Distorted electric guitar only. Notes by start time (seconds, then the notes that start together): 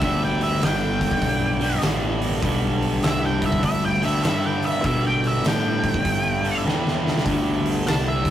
0.01 G2 D3 G3
1.60 G2 D3 G3
1.82 G2 D3 G3
2.41 G2 D3 G3
4.01 G2 D3 G3
4.22 G2 D3 G3
4.83 G2 D3 G3
6.43 G2 D3 G3
6.64 G2 D3 G3
7.24 G2 D3 G3